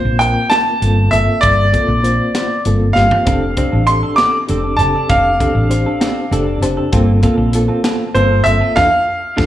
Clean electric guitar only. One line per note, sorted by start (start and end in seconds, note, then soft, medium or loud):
3.27 3.45 C4 medium
3.27 3.45 D4 medium
3.27 3.45 A4 medium
3.57 3.72 C4 medium
3.57 3.73 D4 medium
3.57 3.71 A4 medium
3.72 3.91 D4 soft
3.72 3.91 A4 soft
4.03 4.17 D4 soft
4.03 4.18 A4 soft
4.19 4.37 C4 medium
4.19 4.37 D4 medium
4.19 4.37 A4 medium
4.49 4.64 C4 medium
4.49 4.64 D4 medium
4.49 4.63 A4 medium
4.64 4.83 D4 soft
4.64 4.82 A4 soft
4.95 5.09 D4 soft
4.95 5.10 A4 soft
5.10 5.28 C4 medium
5.10 5.28 D4 medium
5.10 5.29 A4 medium
5.40 5.56 C4 medium
5.40 5.56 D4 medium
5.40 5.55 A4 medium
5.56 5.75 D4 soft
5.56 5.74 A4 soft
5.86 6.00 D4 soft
5.86 6.00 A4 medium
6.01 6.19 C4 medium
6.01 6.20 D4 medium
6.01 6.20 A4 medium
6.31 6.47 C4 medium
6.31 6.47 D4 medium
6.31 6.45 A4 medium
6.46 6.66 D4 soft
6.46 6.65 A4 medium
6.77 6.93 D4 soft
6.77 6.92 A4 soft
6.93 7.11 A#3 medium
6.93 7.11 C4 medium
6.93 7.12 F4 medium
6.93 7.12 A4 medium
7.22 7.38 A#3 medium
7.22 7.37 C4 medium
7.22 7.37 F4 medium
7.22 7.36 A4 medium
7.37 7.57 C4 soft
7.37 7.57 F4 medium
7.37 7.57 A4 medium
7.68 7.83 C4 soft
7.68 7.83 F4 soft
7.68 7.84 A4 soft
7.84 8.03 A#3 medium
7.84 8.03 C4 medium
7.84 8.03 F4 medium
7.84 8.03 A4 medium
8.15 8.31 A#3 medium
8.15 8.31 C4 medium
8.15 8.30 F4 medium
8.15 8.30 A4 medium
8.31 8.50 C4 soft
8.31 8.49 F4 soft
8.31 8.49 A4 soft
8.61 8.76 C4 soft
8.61 8.75 F4 soft
8.61 8.75 A4 soft
8.76 8.86 D4 medium
8.76 8.86 F4 medium
8.76 8.86 A4 medium
9.37 9.46 D4 medium
9.37 9.46 F4 medium
9.37 9.46 A4 medium